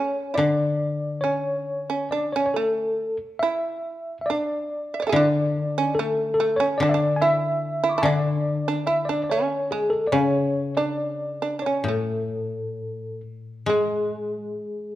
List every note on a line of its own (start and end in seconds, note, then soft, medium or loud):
0.00 0.30 C#4 soft
0.00 0.35 C#5 medium
0.34 3.00 D3 soft
0.34 0.38 E4 soft
0.34 1.20 D5 medium
0.39 1.22 D4 medium
1.21 1.87 C#4 medium
1.21 2.08 C#5 medium
1.90 2.11 C#4 medium
2.11 2.33 D4 medium
2.11 2.33 D5 medium
2.33 2.56 C#4 medium
2.33 2.45 C#5 medium
2.46 2.55 C#5 soft
2.54 3.18 A3 medium
2.54 3.16 A4 medium
3.39 4.26 E4 medium
3.39 4.17 E5 medium
4.21 4.29 E5 medium
4.26 5.02 D5 medium
4.30 4.99 D4 medium
4.94 5.02 E5 soft
5.00 5.09 C#5 soft
5.00 5.06 D5 soft
5.07 5.16 G#4 soft
5.07 5.19 A4 soft
5.07 5.14 E5 medium
5.12 6.79 D3 soft
5.12 5.74 D4 medium
5.12 5.25 E4 soft
5.12 5.93 D5 medium
5.78 5.97 C#4 medium
5.95 6.33 A4 medium
5.99 6.37 A3 medium
6.34 6.56 A4 medium
6.40 6.59 A3 medium
6.56 6.80 C#4 medium
6.56 6.78 C#5 medium
6.78 8.02 D3 soft
6.78 6.86 D5 medium
6.83 6.93 D4 medium
6.89 7.19 D5 medium
6.89 6.95 E5 medium
6.94 7.21 D4 medium
7.16 7.23 G#5 medium
7.22 7.81 E4 medium
7.22 8.02 E5 medium
7.84 7.97 E4 medium
7.89 8.06 C#6 soft
7.89 8.03 D6 soft
7.98 8.05 E4 medium
7.98 8.11 A5 soft
8.02 10.56 D3 soft
8.02 8.64 D4 medium
8.02 8.85 D5 medium
8.02 8.18 E5 soft
8.02 8.15 G#5 medium
8.68 8.87 D4 medium
8.87 9.08 E4 medium
8.87 9.08 E5 medium
9.05 9.30 D4 medium
9.05 9.21 D5 medium
9.24 9.31 D5 medium
9.30 9.71 C#4 medium
9.30 9.70 C#5 medium
9.71 10.12 G#3 medium
9.71 9.92 G#4 medium
9.90 10.06 A4 medium
10.07 10.15 D5 medium
10.12 11.86 C#3 soft
10.12 10.74 C#4 medium
10.12 10.74 C#5 medium
10.77 11.40 D4 medium
10.77 11.61 D5 medium
11.42 11.58 D4 soft
11.59 11.66 D4 soft
11.59 11.84 C#5 medium
11.66 11.87 C#4 soft
11.84 14.55 A2 soft
11.88 13.21 A3 soft
11.88 13.20 A4 soft
13.66 14.95 G#3 soft
13.66 14.52 G#3 medium
13.66 14.95 G#4 medium
14.52 14.91 E3 medium